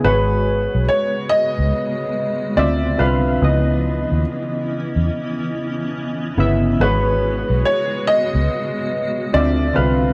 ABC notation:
X:1
M:4/4
L:1/16
Q:"Swing 16ths" 1/4=71
K:G#m
V:1 name="Upright piano"
B4 c2 d6 =d2 B2- | B4 z12 | B4 c2 d6 =d2 B2 |]
V:2 name="Synth keys"
[G,FGBc]6 z6 [=D,=C=Fe]2 [D,CF=f]2 | [C,B,Ed]6 z8 [C,B,Ee]2 | [G,FGBc]6 z6 [=D,=C=Fe]2 [D,CF=f]2 |]
V:3 name="Ambient pad"
[C,G,B,F]12 z4 | [E,B,CE]16 | [C,G,F]12 z4 |]
V:4 name="Fingered electric bass" clef=bass
G,,,3 B,,, z3 C,, z4 =D,,2 =C,,2 | C,,3 D,, z3 E,, z6 =G,,,2 | G,,,3 B,,, z3 C,, z4 =D,,2 =C,,2 |]